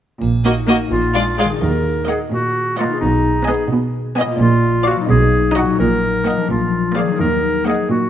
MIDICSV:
0, 0, Header, 1, 9, 480
1, 0, Start_track
1, 0, Key_signature, -6, "minor"
1, 0, Tempo, 466200
1, 214, Time_signature, 6, 3, 24, 8
1, 8337, End_track
2, 0, Start_track
2, 0, Title_t, "Violin section"
2, 0, Program_c, 0, 48
2, 464, Note_on_c, 0, 75, 37
2, 539, Note_off_c, 0, 75, 0
2, 703, Note_on_c, 0, 75, 42
2, 778, Note_off_c, 0, 75, 0
2, 1182, Note_on_c, 0, 74, 44
2, 1259, Note_off_c, 0, 74, 0
2, 1429, Note_on_c, 0, 74, 41
2, 1505, Note_off_c, 0, 74, 0
2, 2145, Note_on_c, 0, 78, 41
2, 2322, Note_off_c, 0, 78, 0
2, 2862, Note_on_c, 0, 78, 44
2, 3040, Note_off_c, 0, 78, 0
2, 3583, Note_on_c, 0, 80, 44
2, 3756, Note_off_c, 0, 80, 0
2, 4299, Note_on_c, 0, 80, 54
2, 4471, Note_off_c, 0, 80, 0
2, 5006, Note_on_c, 0, 77, 52
2, 5183, Note_off_c, 0, 77, 0
2, 5731, Note_on_c, 0, 78, 49
2, 5908, Note_off_c, 0, 78, 0
2, 6448, Note_on_c, 0, 78, 38
2, 6629, Note_off_c, 0, 78, 0
2, 7177, Note_on_c, 0, 77, 41
2, 7356, Note_off_c, 0, 77, 0
2, 7892, Note_on_c, 0, 78, 45
2, 8072, Note_off_c, 0, 78, 0
2, 8337, End_track
3, 0, Start_track
3, 0, Title_t, "Violin section"
3, 0, Program_c, 1, 48
3, 461, Note_on_c, 1, 66, 36
3, 537, Note_off_c, 1, 66, 0
3, 705, Note_on_c, 1, 66, 39
3, 780, Note_off_c, 1, 66, 0
3, 1184, Note_on_c, 1, 65, 42
3, 1260, Note_off_c, 1, 65, 0
3, 1431, Note_on_c, 1, 65, 39
3, 1507, Note_off_c, 1, 65, 0
3, 2142, Note_on_c, 1, 75, 36
3, 2321, Note_off_c, 1, 75, 0
3, 2862, Note_on_c, 1, 75, 43
3, 3040, Note_off_c, 1, 75, 0
3, 3588, Note_on_c, 1, 75, 45
3, 3759, Note_off_c, 1, 75, 0
3, 4296, Note_on_c, 1, 75, 57
3, 4469, Note_off_c, 1, 75, 0
3, 4996, Note_on_c, 1, 74, 50
3, 5178, Note_off_c, 1, 74, 0
3, 5721, Note_on_c, 1, 75, 50
3, 5902, Note_off_c, 1, 75, 0
3, 6445, Note_on_c, 1, 75, 39
3, 6628, Note_off_c, 1, 75, 0
3, 7182, Note_on_c, 1, 74, 38
3, 7359, Note_off_c, 1, 74, 0
3, 7892, Note_on_c, 1, 75, 40
3, 8072, Note_off_c, 1, 75, 0
3, 8337, End_track
4, 0, Start_track
4, 0, Title_t, "Clarinet"
4, 0, Program_c, 2, 71
4, 938, Note_on_c, 2, 65, 68
4, 1388, Note_off_c, 2, 65, 0
4, 1423, Note_on_c, 2, 68, 55
4, 1532, Note_off_c, 2, 68, 0
4, 1666, Note_on_c, 2, 70, 55
4, 2136, Note_off_c, 2, 70, 0
4, 2148, Note_on_c, 2, 68, 54
4, 2255, Note_off_c, 2, 68, 0
4, 2382, Note_on_c, 2, 66, 62
4, 2852, Note_off_c, 2, 66, 0
4, 2862, Note_on_c, 2, 65, 52
4, 3093, Note_off_c, 2, 65, 0
4, 3099, Note_on_c, 2, 63, 57
4, 3566, Note_off_c, 2, 63, 0
4, 3570, Note_on_c, 2, 68, 60
4, 3806, Note_off_c, 2, 68, 0
4, 4532, Note_on_c, 2, 65, 72
4, 4973, Note_off_c, 2, 65, 0
4, 5007, Note_on_c, 2, 66, 67
4, 5114, Note_off_c, 2, 66, 0
4, 5245, Note_on_c, 2, 68, 81
4, 5723, Note_on_c, 2, 66, 63
4, 5738, Note_off_c, 2, 68, 0
4, 5960, Note_off_c, 2, 66, 0
4, 5966, Note_on_c, 2, 70, 68
4, 6678, Note_off_c, 2, 70, 0
4, 6689, Note_on_c, 2, 65, 55
4, 7172, Note_on_c, 2, 68, 52
4, 7187, Note_off_c, 2, 65, 0
4, 7408, Note_off_c, 2, 68, 0
4, 7415, Note_on_c, 2, 70, 66
4, 7886, Note_off_c, 2, 70, 0
4, 7891, Note_on_c, 2, 68, 58
4, 8128, Note_off_c, 2, 68, 0
4, 8136, Note_on_c, 2, 66, 62
4, 8337, Note_off_c, 2, 66, 0
4, 8337, End_track
5, 0, Start_track
5, 0, Title_t, "Harp"
5, 0, Program_c, 3, 46
5, 219, Note_on_c, 3, 46, 38
5, 461, Note_on_c, 3, 63, 35
5, 702, Note_on_c, 3, 66, 37
5, 707, Note_on_c, 3, 70, 38
5, 925, Note_off_c, 3, 46, 0
5, 938, Note_on_c, 3, 46, 55
5, 958, Note_off_c, 3, 63, 0
5, 958, Note_off_c, 3, 66, 0
5, 1180, Note_on_c, 3, 62, 37
5, 1424, Note_on_c, 3, 65, 35
5, 1428, Note_on_c, 3, 68, 40
5, 1483, Note_on_c, 3, 51, 36
5, 1528, Note_on_c, 3, 63, 33
5, 1578, Note_on_c, 3, 66, 32
5, 1622, Note_on_c, 3, 75, 31
5, 1683, Note_off_c, 3, 46, 0
5, 1684, Note_off_c, 3, 62, 0
5, 1684, Note_off_c, 3, 65, 0
5, 1686, Note_off_c, 3, 68, 0
5, 2924, Note_on_c, 3, 47, 44
5, 2959, Note_off_c, 3, 63, 0
5, 2971, Note_on_c, 3, 63, 35
5, 3018, Note_on_c, 3, 68, 35
5, 3031, Note_off_c, 3, 51, 0
5, 3051, Note_off_c, 3, 75, 0
5, 3064, Note_on_c, 3, 75, 34
5, 3078, Note_off_c, 3, 66, 0
5, 3126, Note_off_c, 3, 70, 0
5, 4347, Note_on_c, 3, 46, 51
5, 4395, Note_on_c, 3, 58, 43
5, 4440, Note_on_c, 3, 65, 41
5, 4456, Note_off_c, 3, 47, 0
5, 4480, Note_off_c, 3, 63, 0
5, 4486, Note_on_c, 3, 74, 42
5, 4503, Note_off_c, 3, 68, 0
5, 4526, Note_off_c, 3, 75, 0
5, 5064, Note_on_c, 3, 47, 46
5, 5111, Note_on_c, 3, 54, 41
5, 5156, Note_on_c, 3, 63, 45
5, 5173, Note_off_c, 3, 46, 0
5, 5196, Note_off_c, 3, 58, 0
5, 5202, Note_on_c, 3, 75, 44
5, 5219, Note_off_c, 3, 65, 0
5, 5242, Note_off_c, 3, 74, 0
5, 5784, Note_on_c, 3, 46, 44
5, 5821, Note_off_c, 3, 54, 0
5, 5833, Note_on_c, 3, 54, 35
5, 5864, Note_off_c, 3, 63, 0
5, 5876, Note_on_c, 3, 63, 33
5, 5897, Note_off_c, 3, 47, 0
5, 5923, Note_on_c, 3, 70, 33
5, 6495, Note_off_c, 3, 46, 0
5, 6507, Note_on_c, 3, 46, 37
5, 6554, Note_on_c, 3, 53, 31
5, 6602, Note_on_c, 3, 62, 33
5, 6635, Note_off_c, 3, 70, 0
5, 6645, Note_off_c, 3, 54, 0
5, 6648, Note_on_c, 3, 70, 30
5, 6667, Note_off_c, 3, 63, 0
5, 6692, Note_off_c, 3, 75, 0
5, 7234, Note_on_c, 3, 51, 40
5, 7279, Note_on_c, 3, 54, 32
5, 7324, Note_on_c, 3, 63, 35
5, 7344, Note_off_c, 3, 46, 0
5, 7360, Note_off_c, 3, 70, 0
5, 7368, Note_off_c, 3, 53, 0
5, 7372, Note_on_c, 3, 70, 34
5, 7391, Note_off_c, 3, 62, 0
5, 8337, Note_off_c, 3, 51, 0
5, 8337, Note_off_c, 3, 54, 0
5, 8337, Note_off_c, 3, 63, 0
5, 8337, Note_off_c, 3, 70, 0
5, 8337, End_track
6, 0, Start_track
6, 0, Title_t, "Viola section"
6, 0, Program_c, 4, 48
6, 457, Note_on_c, 4, 58, 38
6, 534, Note_off_c, 4, 58, 0
6, 695, Note_on_c, 4, 58, 39
6, 772, Note_off_c, 4, 58, 0
6, 1177, Note_on_c, 4, 56, 36
6, 1255, Note_off_c, 4, 56, 0
6, 1420, Note_on_c, 4, 56, 39
6, 1498, Note_off_c, 4, 56, 0
6, 2140, Note_on_c, 4, 58, 39
6, 2320, Note_off_c, 4, 58, 0
6, 2866, Note_on_c, 4, 58, 47
6, 3042, Note_off_c, 4, 58, 0
6, 3578, Note_on_c, 4, 59, 49
6, 3754, Note_off_c, 4, 59, 0
6, 4291, Note_on_c, 4, 59, 53
6, 4467, Note_off_c, 4, 59, 0
6, 5007, Note_on_c, 4, 65, 50
6, 5183, Note_off_c, 4, 65, 0
6, 5726, Note_on_c, 4, 63, 49
6, 5905, Note_off_c, 4, 63, 0
6, 6443, Note_on_c, 4, 58, 35
6, 6627, Note_off_c, 4, 58, 0
6, 7170, Note_on_c, 4, 58, 40
6, 7352, Note_off_c, 4, 58, 0
6, 7890, Note_on_c, 4, 58, 41
6, 8071, Note_off_c, 4, 58, 0
6, 8337, End_track
7, 0, Start_track
7, 0, Title_t, "Cello section"
7, 0, Program_c, 5, 48
7, 215, Note_on_c, 5, 46, 47
7, 787, Note_off_c, 5, 46, 0
7, 935, Note_on_c, 5, 46, 59
7, 1512, Note_off_c, 5, 46, 0
7, 1663, Note_on_c, 5, 51, 49
7, 2234, Note_off_c, 5, 51, 0
7, 2385, Note_on_c, 5, 46, 51
7, 2954, Note_off_c, 5, 46, 0
7, 3101, Note_on_c, 5, 47, 53
7, 3666, Note_off_c, 5, 47, 0
7, 3815, Note_on_c, 5, 47, 59
7, 4379, Note_off_c, 5, 47, 0
7, 4525, Note_on_c, 5, 46, 63
7, 5093, Note_off_c, 5, 46, 0
7, 5241, Note_on_c, 5, 47, 61
7, 5815, Note_off_c, 5, 47, 0
7, 5961, Note_on_c, 5, 46, 55
7, 6540, Note_off_c, 5, 46, 0
7, 6686, Note_on_c, 5, 46, 49
7, 7265, Note_off_c, 5, 46, 0
7, 7409, Note_on_c, 5, 51, 52
7, 7983, Note_off_c, 5, 51, 0
7, 8128, Note_on_c, 5, 46, 57
7, 8337, Note_off_c, 5, 46, 0
7, 8337, End_track
8, 0, Start_track
8, 0, Title_t, "Double bass section"
8, 0, Program_c, 6, 48
8, 220, Note_on_c, 6, 34, 46
8, 789, Note_off_c, 6, 34, 0
8, 940, Note_on_c, 6, 34, 57
8, 1515, Note_off_c, 6, 34, 0
8, 1669, Note_on_c, 6, 39, 44
8, 2113, Note_off_c, 6, 39, 0
8, 3107, Note_on_c, 6, 35, 49
8, 3546, Note_off_c, 6, 35, 0
8, 4532, Note_on_c, 6, 34, 64
8, 4973, Note_off_c, 6, 34, 0
8, 5246, Note_on_c, 6, 35, 64
8, 5693, Note_off_c, 6, 35, 0
8, 5964, Note_on_c, 6, 34, 56
8, 6416, Note_off_c, 6, 34, 0
8, 6688, Note_on_c, 6, 34, 46
8, 7140, Note_off_c, 6, 34, 0
8, 7415, Note_on_c, 6, 39, 50
8, 7862, Note_off_c, 6, 39, 0
8, 8337, End_track
9, 0, Start_track
9, 0, Title_t, "Drums"
9, 222, Note_on_c, 9, 81, 27
9, 325, Note_off_c, 9, 81, 0
9, 8337, End_track
0, 0, End_of_file